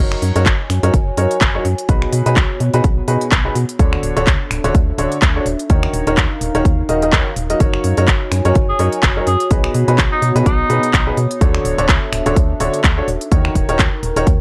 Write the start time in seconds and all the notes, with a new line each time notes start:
0.00 F#1 F#3 D#4 F#4 A#4 C#5
0.08 G#5, finger snap
0.15 C#5
0.22 F#2, open hi-hat
0.36 F#2 F#3 D#4 F#4 A#4 C#5, closed hi-hat
0.46 F#1, kick, clap, closed hi-hat
0.70 F#2, finger snap, open hi-hat
0.83 F#2 F#3 D#4 F#4 A#4 C#5, closed hi-hat
0.94 F#1, kick, closed hi-hat
1.17 F#2 F#3 D#4 F#4 A#4 C#5, open hi-hat
1.31 closed hi-hat
1.41 F#1, kick, clap, closed hi-hat
1.55 F#3 D#4 F#4 A#4 C#5
1.65 F#2, open hi-hat
1.78 closed hi-hat
1.89 B1 B2 B3 D#4 F#4 G#4 B4, kick, closed hi-hat
2.02 finger snap
2.13 B2, open hi-hat
2.26 B2 D#4 F#4 G#4 B4, closed hi-hat
2.36 B1, kick, clap, closed hi-hat
2.60 B2, open hi-hat
2.74 B2 D#4 F#4 G#4 B4, closed hi-hat
2.84 B1, kick, closed hi-hat
3.08 B2 D#4 F#4 G#4 B4, open hi-hat
3.21 closed hi-hat
3.32 B1, kick, clap, closed hi-hat
3.45 B2 D#4 F#4 G#4 B4
3.55 B2, open hi-hat
3.69 closed hi-hat
3.79 D2 D3 D4 F#4 A4 C#5, kick, closed hi-hat
3.93 A4, finger snap
4.03 D1, open hi-hat
4.17 D1 D3 D4 F#4 A4 C#5, closed hi-hat
4.27 D2, kick, clap, closed hi-hat
4.40 E5
4.51 D1, finger snap, open hi-hat
4.64 D1 D3 D4 F#4 A4 C#5, closed hi-hat
4.75 D2, kick, closed hi-hat
4.98 D1 D3 D4 F#4 A4 C#5, open hi-hat
5.12 closed hi-hat
5.22 D2, kick, clap, closed hi-hat
5.36 D4 F#4 A4 C#5
5.46 D#1 D#4, open hi-hat
5.59 closed hi-hat
5.70 D#2 D#3 D#4 F#4 A#4 C#5, kick, closed hi-hat
5.77 A#4
5.82 F5, finger snap
5.94 D#1, open hi-hat
6.07 D#1 D#3 D#4 F#4 A#4 C#5, closed hi-hat
6.17 D#2, kick, clap, closed hi-hat
6.41 D#1, open hi-hat
6.55 D#1 D#3 D#4 F#4 A#4 C#5, closed hi-hat
6.65 D#2, kick, closed hi-hat
6.89 D#1 D#3 D#4 F#4 A#4 D#5, open hi-hat
7.02 D#3 D#4 F#4 A#4 D#5, closed hi-hat
7.13 D#2 D#3 F#4 C#5, kick, clap, closed hi-hat
7.36 D#1, open hi-hat
7.50 F#3 D#4 F#4 A#4 D#5, closed hi-hat
7.60 F#1 F#3 D#4 F#4 A#4 C#5, kick, closed hi-hat
7.64 C#5
7.74 finger snap
7.84 F#2, open hi-hat
7.97 F#2 F#3 D#4 F#4 A#4 C#5 G#5, closed hi-hat
8.08 F#1, kick, clap, closed hi-hat
8.32 F#2, finger snap, open hi-hat
8.45 F#2 F#3 D#4 F#4 A#4 C#5, closed hi-hat
8.55 F#1, kick, closed hi-hat
8.69 G#4
8.79 F#2 F#3 D#4 F#4 A#4 C#5, open hi-hat
8.92 closed hi-hat
9.03 F#1, kick, clap, closed hi-hat
9.17 F#3 D#4 F#4 A#4 C#5
9.27 F#2 G#4, open hi-hat
9.40 closed hi-hat
9.51 B1 B2 B3 D#4 F#4 G#4 B4, kick, closed hi-hat
9.64 finger snap
9.74 B2, open hi-hat
9.88 B2 D#4 F#4 G#4 B4, closed hi-hat
9.98 B1, kick, clap, closed hi-hat
10.12 D#4
10.22 B2, open hi-hat
10.36 B2 D#4 F#4 G#4 B4, closed hi-hat
10.46 B1 D#4, kick, closed hi-hat
10.70 B2 D#4 F#4 G#4 B4, open hi-hat
10.83 closed hi-hat
10.94 B1, kick, clap, closed hi-hat
11.07 B2 D#4 F#4 G#4 B4
11.17 B2, open hi-hat
11.31 closed hi-hat
11.41 D2 D3 D4 F#4 A4 C#5, kick, closed hi-hat
11.47 A4
11.55 E5, finger snap
11.65 D1, open hi-hat
11.78 D1 D3 D4 F#4 A4 C#5, closed hi-hat
11.89 D2, kick, clap, closed hi-hat
12.13 D1, finger snap, open hi-hat
12.26 D1 D3 D4 F#4 A4 C#5, closed hi-hat
12.36 D2, kick, closed hi-hat
12.60 D1 D3 D4 F#4 A4 C#5, open hi-hat
12.74 closed hi-hat
12.84 D2, kick, clap, closed hi-hat
12.98 D4 F#4 A4 C#5
13.08 D#1 D#4, open hi-hat
13.21 A#4, closed hi-hat
13.32 D#2 D#3 D#4 F#4 A#4 C#5, kick, closed hi-hat
13.45 finger snap
13.55 D#1, kick, open hi-hat
13.69 D#1 D#3 D#4 F#4 A#4 C#5, closed hi-hat
13.79 D#2, kick, clap, closed hi-hat
14.03 D#1, open hi-hat
14.16 D#1 D#3 D#4 F#4 A#4 C#5, closed hi-hat
14.27 D#2, kick, closed hi-hat